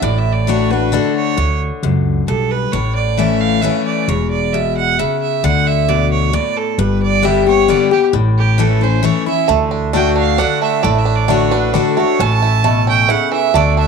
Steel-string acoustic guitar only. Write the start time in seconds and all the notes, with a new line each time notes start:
0.02 A2
0.47 D3 A3 D4 F#4
0.71 D4 F#4
0.92 D3 A3 D4 F#4
1.37 D3
1.83 F#2
2.28 G2
2.73 A2
3.17 E3 A3 C#4 E4
3.62 E3 A3 C#4 E4
4.09 E2
4.54 B2
4.99 C#3
5.44 D3
5.88 B2
6.33 A2
6.79 G2
7.22 D3 G3 B3 G4
7.46 B3 G4
7.68 D3 G3 B3 G4
7.91 B3 G4
8.13 A2
8.58 E3 A3 C#4 E4
8.81 C#4 E4
9.03 E3 A3 C#4 E4
9.26 C#4 E4
9.49 D3
9.93 D3 A3 D4 F#4
10.38 D3 A3 D4 F#4
10.84 A2
11.28 D3 A3 D4 F#4
11.52 D4 F#4
11.74 D3 A3 D4 F#4
11.97 D4 F#4
12.20 A2
12.64 B2
13.10 C#3
13.55 D3